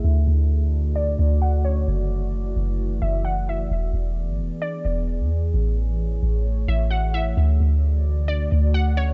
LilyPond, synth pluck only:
\new Staff \with { instrumentName = "Synth pluck" } { \time 4/4 \key d \lydian \tempo 4 = 131 r2 d''4 fis''8 cis''8 | r2 r8 e''8 fis''8 e''8 | r2 d''4 r4 | r2 r8 e''8 fis''8 e''8 |
r2 d''4 fis''8 cis''8 | }